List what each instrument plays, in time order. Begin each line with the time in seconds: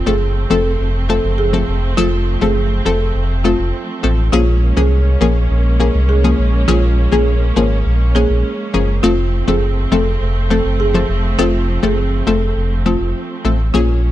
Already playing: string section F3 A3 C4
0.06 sub bass F#1, synth pluck F3 A3 C4 A4, marimba G#4
0.50 sub bass F1, synth pluck F3 A3 C4 A4, marimba A4
0.80 sub bass F1
1.09 synth pluck F3 A3 C4 A4, marimba A4
1.24 sub bass F#1
1.38 marimba G#4
1.53 synth pluck F3 A3 C4 A4
1.68 sub bass F1
1.97 sub bass F1, synth pluck F3 A3 C4 A4, marimba F4
2.41 sub bass F#1, synth pluck F3 A3 C4 A4, marimba G#4
2.86 sub bass F1, synth pluck F3 A3 C4 A4, marimba A4
3.15 sub bass F1
3.44 synth pluck F3 A3 C4 A4, marimba F4
3.59 sub bass F1
4.03 sub bass A1, synth pluck F3 A3 C4 A4
4.32 sub bass A#1, synth pluck F3 A#3 C#4 G#4, string section G#3 A#3 C#4, marimba F4
4.77 sub bass C2, synth pluck F3 A#3 C#4 G#4, marimba G#4
5.21 sub bass A#1, synth pluck F3 A#3 C#4 G#4, marimba A#4
5.50 sub bass A#1
5.80 synth pluck F3 A#3 C#4 G#4, marimba A#4
5.95 sub bass C2
6.09 marimba G#4
6.24 synth pluck F3 A#3 C#4 G#4
6.39 sub bass A#1
6.68 sub bass A#1, synth pluck F3 A#3 C#4 G#4, marimba F4
7.12 sub bass A#1, synth pluck F3 A#3 C#4 G#4, marimba G#4
7.56 sub bass G#1, synth pluck F3 A#3 C#4 G#4, marimba A#4
7.86 sub bass A#1
8.15 synth pluck F3 A#3 C#4 G#4, marimba G#4
8.30 sub bass A#1
8.74 sub bass F#1, synth pluck F3 A#3 C#4 G#4
9.03 sub bass F1, synth pluck F3 A3 C4 A4, string section F3 A3 C4, marimba F4
9.47 sub bass F#1, synth pluck F3 A3 C4 A4, marimba G#4
9.92 sub bass F1, synth pluck F3 A3 C4 A4, marimba A4
10.21 sub bass F1
10.50 synth pluck F3 A3 C4 A4, marimba A4
10.65 sub bass F#1
10.80 marimba G#4
10.94 synth pluck F3 A3 C4 A4
11.09 sub bass F1
11.38 sub bass F1, synth pluck F3 A3 C4 A4, marimba F4
11.83 sub bass F#1, synth pluck F3 A3 C4 A4, marimba G#4
12.27 sub bass F1, synth pluck F3 A3 C4 A4, marimba A4
12.56 sub bass F1
12.86 synth pluck F3 A3 C4 A4, marimba F4
13.01 sub bass F1
13.45 sub bass A1, synth pluck F3 A3 C4 A4
13.74 sub bass A#1, synth pluck F3 A#3 C#4 G#4, string section G#3 A#3 C#4, marimba F4